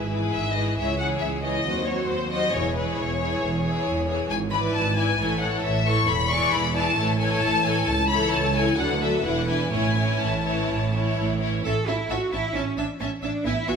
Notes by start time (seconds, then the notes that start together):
Already playing: G#1 G#2 G#4
0.11 E3 E4 G#4 B4
0.32 G#1 G#2 E5
0.55 E3 E4 G#4 B4 D#5
0.77 C#2 E3 E4 G#4 C#5 E5
0.99 E3 E4 G#4 C#5 F#5
1.20 C#2 E5
1.42 E3 E4 G#4 C#5 D#5
1.65 D#2 F#3 C4 F#4 C5
1.86 F#3 C4 F#4 C5 C#5
2.09 D#2 C5
2.31 F#3 C4 F#4 C5 D#5
2.53 E1 E2 E3 E4 G#4 C#5
2.76 E3 E4 G#4 B4 C#5
2.98 E1 E2 C#5
3.20 E3 E4 G#4 C#5
3.42 E1 E2
3.63 E3 E4 G#4 C#5
3.85 E1 E2
4.07 E3 E4 G#4 C#5
4.29 G#1 G#2 G#5
4.52 E3 E4 B4 D5 B5
4.74 G#1 G#2 A5
4.96 E3 E4 B4 D5 G#5
5.19 A1 A2 E3 E4 A4 C#5
5.41 E3 E4 A4 C#5 F#5
5.63 A1 A2 E5
5.85 E3 E4 A4 C#5 C#6
6.07 E1 E2 B5
6.30 E3 E4 G#4 D5 C#6
6.52 E1 E2 B5
6.74 E3 E4 G#4 D5 A5
6.96 A1 A2 E3 E4 A4 C#5
7.19 E3 E4 A4 C#5 G#5
7.41 A1 A2 A5
7.65 E3 E4 A4 C#5 G#5
7.87 C#2 A5
8.09 E3 E4 A4 C#5 B5
8.32 C#2 A5
8.56 E3 E4 A4 C#5 G#5
8.78 D2 F#3 D4 A4 B4 F#5
9.01 F#3 D4 A4 B4 E5
9.24 E1 E2 E3 D4 E4 B4 F#5
9.48 E3 D4 E4 B4 G#5
9.73 A1 A2 E3 C#4 E4 C#5 G#5
9.96 E3 C#4 E4 C#5
10.22 A1 A2 A5
10.46 E3 C#4 E4 C#5
10.71 A1 A2
10.94 E3 C#4 E4 C#5
11.18 A1 A2
11.41 E3 C#4 E4 C#5
11.65 A1 C#4 A4 E5 A5
11.88 A1 C#4 E4 E5 A5
12.10 A1 C#4 F#4 E5 A5
12.32 A1 C#4 E4 E5 A5
12.55 A1 C#4 E5 A5
12.78 A1 C#4 D4 E5 A5
13.00 A1 C#4 E5 A5
13.23 A1 C#4 D4 E5 A5
13.45 A1 B3 E4 E5 G#5
13.68 A1 B3 F#4 E5 G#5